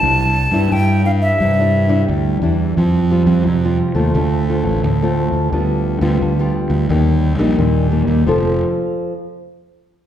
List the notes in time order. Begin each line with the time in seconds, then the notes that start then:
Already playing: A5
0.03 C2 C3 G3 D4 E4
0.51 G2 G3 D4 E4
0.72 G2 G3 G5
1.04 G3 D4 E4 F5
1.22 E5
1.40 G2 C3
1.60 G3 D4 E4
1.89 G3 D4 E4
2.09 D2 G3
2.42 E2 G3 D4 E4
2.77 F2 F3 G3 C4 F4
3.11 G3 C4 F4
3.26 F2
3.47 F2 C3
3.64 G3 C4 F4
3.95 D#2 A3 C4 F4
4.15 D2 D3
4.49 A3 C4 F4
4.64 A1
4.83 D2 A2
5.02 A3 C4 F4
5.32 D2
5.52 D2 D3 G3 B3 F4
6.01 D2 G3 B3 F4
6.21 D2 D3
6.39 G3 B3 F4
6.70 D2
6.90 D#2 D#3 G3 A#3 D#4
7.39 A#1 G3 A#3 D#4
7.58 D#2 A#2
7.91 G3 A#3 D#4
8.07 D#2
8.26 F1 F3 C4 F4 A4